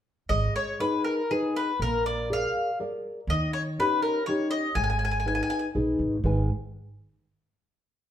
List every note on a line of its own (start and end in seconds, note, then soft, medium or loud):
0.29 0.46 G#1 medium
0.29 0.78 G#3 medium
0.29 0.55 D#5 medium
0.56 0.79 C#5 medium
0.80 1.20 D#4 soft
0.80 1.20 G#4 soft
0.80 1.04 B4 medium
0.80 1.20 B4 soft
1.04 1.30 A#4 medium
1.31 1.70 D#4 soft
1.31 1.54 G#4 medium
1.31 1.70 G#4 soft
1.31 1.71 B4 soft
1.56 1.79 B4 medium
1.80 2.44 A#1 medium
1.80 2.28 A#3 medium
1.80 2.06 A#4 medium
2.06 2.28 D5 medium
2.30 2.70 G#4 soft
2.30 2.70 A#4 soft
2.30 2.70 D5 soft
2.30 2.78 F5 medium
2.80 3.19 G#4 soft
2.80 3.20 A#4 soft
2.80 3.20 D5 soft
3.27 3.44 D#2 medium
3.27 3.77 D#3 medium
3.27 3.53 D#5 medium
3.53 3.60 C#5 medium
3.79 4.18 C#4 soft
3.79 4.19 D#4 soft
3.79 4.19 G4 soft
3.79 4.02 B4 medium
4.02 4.25 A#4 medium
4.26 4.67 C#4 soft
4.26 4.67 D#4 soft
4.26 4.68 G4 soft
4.26 4.50 C#5 medium
4.51 4.74 D#5 medium
4.75 5.40 G#1 medium
4.75 5.25 G#3 medium
4.75 4.82 G#5 medium
4.84 4.88 G#5 medium
4.90 4.97 G#5 medium
4.99 5.03 G#5 soft
5.05 5.10 G#5 medium
5.11 5.18 G#5 medium
5.20 5.26 G#5 medium
5.26 5.66 D#4 soft
5.26 5.66 G#4 soft
5.26 5.66 B4 soft
5.26 5.34 G#5 medium
5.35 5.42 G#5 medium
5.43 5.49 G#5 medium
5.50 5.57 G#5 medium
5.59 5.66 G#5 soft
5.75 5.98 A#1 medium
5.75 6.15 D#4 soft
5.75 6.16 G#4 soft
5.75 6.16 B4 medium
5.99 6.22 G#1 medium
6.24 6.48 G#1 medium
6.24 6.48 G#2 medium
6.24 6.49 D#3 soft
6.24 6.49 G#3 soft
6.24 6.49 D#4 soft
6.24 6.49 B4 soft
6.24 6.49 G#5 medium